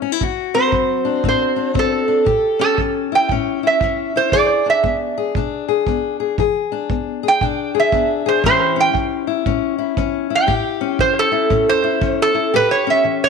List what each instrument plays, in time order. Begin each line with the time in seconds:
Already playing: steel-string acoustic guitar E3 G4
0.02 steel-string acoustic guitar C#4
0.12 steel-string acoustic guitar E4
0.21 steel-string acoustic guitar D3 F#4, kick
0.54 steel-string acoustic guitar C4, resonator guitar played with a steel bar C5
0.72 steel-string acoustic guitar F#3, kick
1.05 steel-string acoustic guitar D4
1.24 steel-string acoustic guitar A2 C4, kick
1.29 resonator guitar played with a steel bar C5
1.56 steel-string acoustic guitar D4
1.74 steel-string acoustic guitar F#3 C4, kick
1.79 resonator guitar played with a steel bar A4
2.08 steel-string acoustic guitar D4
2.25 steel-string acoustic guitar A2 G4, kick
2.59 steel-string acoustic guitar C#4, resonator guitar played with a steel bar A4
2.78 steel-string acoustic guitar E3, kick
3.12 steel-string acoustic guitar E4, resonator guitar played with a steel bar G5
3.29 steel-string acoustic guitar A2 C#4, kick
3.63 steel-string acoustic guitar E4
3.67 resonator guitar played with a steel bar E5
3.81 steel-string acoustic guitar E3 C#4, kick
4.16 steel-string acoustic guitar E4, resonator guitar played with a steel bar C5
4.32 steel-string acoustic guitar E3 G#4, resonator guitar played with a steel bar D5, kick
4.66 steel-string acoustic guitar D4, resonator guitar played with a steel bar E5
4.83 steel-string acoustic guitar B3, kick
5.18 steel-string acoustic guitar G#4
5.35 steel-string acoustic guitar B2 D4, kick
5.68 steel-string acoustic guitar G#4
5.87 steel-string acoustic guitar B3 D4, kick
6.20 steel-string acoustic guitar G#4
6.38 steel-string acoustic guitar E3 G#4, kick
6.72 steel-string acoustic guitar D4
6.90 steel-string acoustic guitar B3, kick
7.23 steel-string acoustic guitar G#4
7.28 resonator guitar played with a steel bar G5
7.41 steel-string acoustic guitar B2 D4, kick
7.75 steel-string acoustic guitar G#4
7.80 resonator guitar played with a steel bar E5
7.92 steel-string acoustic guitar B3 D4, kick
8.26 steel-string acoustic guitar G#4, resonator guitar played with a steel bar C5
8.43 steel-string acoustic guitar A2 E3 C#4 E4 G4, resonator guitar played with a steel bar C5, kick
8.76 steel-string acoustic guitar C#4
8.80 resonator guitar played with a steel bar G5
8.93 steel-string acoustic guitar E3, kick
9.27 steel-string acoustic guitar E4
9.46 steel-string acoustic guitar A2 C#4, kick
9.78 steel-string acoustic guitar E4
9.97 steel-string acoustic guitar E3 C#4, kick
10.30 steel-string acoustic guitar E4
10.35 resonator guitar played with a steel bar G5
10.47 steel-string acoustic guitar A2 G4, kick
10.81 steel-string acoustic guitar C#4
10.99 steel-string acoustic guitar E3, resonator guitar played with a steel bar C5, kick
11.19 resonator guitar played with a steel bar A4
11.32 steel-string acoustic guitar E4
11.50 steel-string acoustic guitar A2 C#4, kick
11.69 resonator guitar played with a steel bar C5
11.84 steel-string acoustic guitar E4
12.01 steel-string acoustic guitar E3 C#4, kick
12.22 resonator guitar played with a steel bar A4
12.34 steel-string acoustic guitar E4
12.54 steel-string acoustic guitar A2 G4, resonator guitar played with a steel bar B4
12.71 resonator guitar played with a steel bar C#5
12.87 steel-string acoustic guitar C#4, resonator guitar played with a steel bar E5
13.04 steel-string acoustic guitar E3
13.24 resonator guitar played with a steel bar C#5